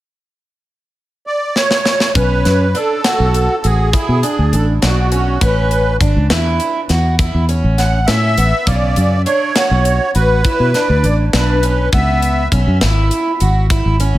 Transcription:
1.27 1.57 D5 medium
1.56 2.12 C#5 medium
1.56 snare medium
1.71 snare medium
1.85 snare medium
2.00 snare medium
2.15 2.43 B1 medium
2.15 2.65 C#4 medium
2.15 2.77 B4 medium
2.15 kick loud
2.15 closed hi-hat medium
2.45 2.73 F#2 medium
2.45 snare soft
2.45 closed hi-hat medium
2.75 2.99 D4 medium
2.75 3.67 A4 medium
2.75 closed hi-hat medium
3.04 3.54 F#4 medium
3.04 snare loud
3.04 closed hi-hat medium
3.20 3.47 B1 medium
3.34 closed hi-hat medium
3.64 3.92 A1 medium
3.64 3.88 F#4 medium
3.64 4.56 G#4 medium
3.64 closed hi-hat medium
3.93 4.18 E4 medium
3.93 kick medium
3.93 closed hi-hat medium
4.09 4.22 B2 medium
4.23 4.72 D4 medium
4.23 closed hi-hat soft
4.39 4.52 D2 medium
4.52 4.80 A1 medium
4.52 4.66 A4 medium
4.52 closed hi-hat soft
4.82 5.38 B1 medium
4.82 5.07 D4 medium
4.82 5.43 F#4 medium
4.82 snare medium
4.82 closed hi-hat medium
5.12 5.37 C#4 medium
5.12 closed hi-hat medium
5.41 5.97 A1 medium
5.41 5.91 C#4 medium
5.41 5.97 B4 medium
5.41 kick medium
5.41 closed hi-hat medium
5.71 closed hi-hat soft
6.01 6.14 G#1 medium
6.01 6.26 D4 medium
6.01 kick medium
6.01 closed hi-hat medium
6.16 6.30 C#2 medium
6.30 6.58 E2 medium
6.30 6.80 E4 medium
6.30 snare loud
6.30 closed hi-hat medium
6.60 closed hi-hat medium
6.89 7.31 E2 medium
6.89 7.14 F#4 medium
6.89 snare soft
6.89 closed hi-hat medium
7.19 7.44 E4 medium
7.19 kick medium
7.19 closed hi-hat medium
7.34 7.62 E2 medium
7.49 7.98 C#4 medium
7.49 closed hi-hat soft
7.64 8.05 A1 medium
7.78 8.09 F#5 medium
7.78 snare soft
7.78 closed hi-hat medium
8.07 8.36 A2 medium
8.07 8.33 C#4 medium
8.07 8.68 E5 medium
8.07 snare medium
8.07 closed hi-hat medium
8.37 8.51 A1 medium
8.37 8.62 B3 medium
8.37 closed hi-hat medium
8.67 8.95 B1 medium
8.67 9.16 C#3 medium
8.67 9.22 D5 medium
8.67 kick medium
8.67 closed hi-hat medium
8.96 9.25 F#2 medium
8.96 closed hi-hat medium
9.26 9.51 D4 medium
9.26 10.11 C#5 medium
9.26 closed hi-hat medium
9.56 10.05 F#4 medium
9.56 snare loud
9.56 closed hi-hat medium
9.71 9.98 B1 medium
9.85 closed hi-hat medium
10.15 10.43 A1 medium
10.15 10.40 F#4 medium
10.15 11.07 B4 medium
10.15 closed hi-hat soft
10.44 10.70 E4 medium
10.44 kick loud
10.44 closed hi-hat medium
10.60 10.73 B2 medium
10.74 11.24 D4 medium
10.74 snare soft
10.74 closed hi-hat soft
10.89 11.03 D2 medium
11.04 11.31 A1 medium
11.04 11.18 D5 medium
11.04 closed hi-hat soft
11.33 11.89 B1 medium
11.33 11.58 D4 medium
11.33 11.89 B4 medium
11.33 snare loud
11.33 closed hi-hat medium
11.63 11.88 C#4 medium
11.63 closed hi-hat medium
11.93 12.48 C#2 medium
11.93 12.42 B3 medium
11.93 12.48 E5 medium
11.93 kick loud
11.93 closed hi-hat medium
12.22 closed hi-hat medium
12.52 12.66 B1 medium
12.52 12.77 C#4 medium
12.52 kick medium
12.52 closed hi-hat medium
12.67 12.81 F#2 medium
12.81 13.09 G#1 medium
12.81 13.31 E4 medium
12.81 snare medium
12.81 closed hi-hat medium
13.11 closed hi-hat medium
13.40 13.82 G#1 medium
13.40 13.65 F#4 medium
13.40 closed hi-hat medium
13.70 13.95 E4 medium
13.70 kick loud
13.70 closed hi-hat medium
13.85 14.13 G#1 medium
14.00 14.18 C#4 medium
14.00 closed hi-hat medium
14.15 14.18 C#2 medium

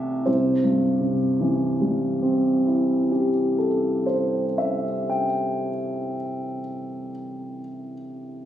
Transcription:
0.00 0.23 C2 soft
0.00 0.23 E3 soft
0.00 0.23 A3 soft
0.00 0.23 E4 soft
0.00 0.23 A4 soft
0.00 0.26 E5 soft
0.26 3.29 C2 soft
0.26 3.28 C5 soft
0.64 3.66 G2 soft
1.00 4.02 C3 soft
1.41 4.43 E3 soft
1.81 4.84 G3 soft
2.22 5.25 C4 soft
2.67 5.69 E4 soft
3.12 6.14 G4 soft
3.58 6.61 A4 soft
4.06 7.09 C5 soft
4.58 7.60 E5 soft
5.10 7.93 G5 soft

